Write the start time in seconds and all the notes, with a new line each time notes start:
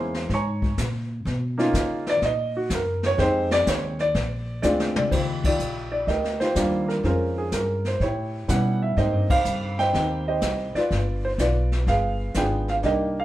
Already playing: E2 G#3 A#3 C#4 E4 C5 C6
0.14 snare
0.29 G#2, brush sweep, kick, snare
0.33 C#5 G#5 A#5 C#6
0.62 kick
0.78 A#2, kick, snare, hi-hat pedal
1.25 B2, brush sweep, kick, snare
1.58 A#3 C#4 D#4 F4, snare
1.74 C#3, kick, snare, hi-hat pedal
2.07 D5, snare
2.22 A#2 D#5, brush sweep, kick, snare
2.57 F#4
2.70 F#2, kick, snare, hi-hat pedal
2.75 A#4
3.03 C#5, snare
3.17 F2 G#3 C4 D#4 G4 C5, brush sweep, kick, snare
3.51 D5, snare
3.67 D#2 C#5, kick, snare, hi-hat pedal
3.99 D5, snare
4.14 A#1, brush sweep, kick, snare
4.62 D2 G#3 C4 D4 F4 D5, snare, hi-hat pedal
4.80 snare
4.96 D5, mid tom
5.11 D#2 F4 G4 C5, brush sweep, kick, snare, crash
5.44 F4 G4 D5, kick, crash
5.59 A#1, hi-hat pedal
5.92 D5
6.07 D2 G4 A#4 D#5, brush sweep, kick, snare
6.24 snare
6.40 F4 G4 C5, snare
6.55 D#2 G3 A#3 D4 F4, kick, snare, hi-hat pedal
6.88 A#4, snare
7.03 F2 G#3 C#4 F4 A#4 C5, brush sweep, kick, snare
7.08 C#4
7.38 G#4
7.52 G2 A#4, kick, snare, hi-hat pedal
7.85 C5, snare
8.00 A2 E4 G4 C#5, brush sweep, kick, snare
8.48 B2 G3 B3 C#4 E4 F#5, kick, snare, hi-hat pedal
8.82 E5
8.97 G#2 A#3 C4 D#4 G4 C5 D#5, brush sweep, kick, snare
9.12 G2
9.28 D#2 C5 F5, kick, crash
9.45 G2, hi-hat pedal
9.79 C5 D#5 G5, snare
9.93 D#2 A#3 C4 D#4 G4, brush sweep, kick, snare
10.28 G4 C5 D#5
10.41 C2, kick, snare, hi-hat pedal
10.74 F4 B4 D5, muted upright bass stroke, snare
10.91 G1, brush sweep, kick, snare
11.25 C5
11.38 B1 F4 B4 D5, kick, snare, hi-hat pedal
11.72 snare
11.87 G1 G#4 B4 F5, brush sweep, kick, snare
12.34 G#1 B3 D4 F4 G#4 G5, kick, snare, hi-hat pedal
12.68 F5, snare
12.83 C2 A#3 D4 D#4 G4 A#4 D#5, brush sweep, kick, snare
13.20 A#4 F5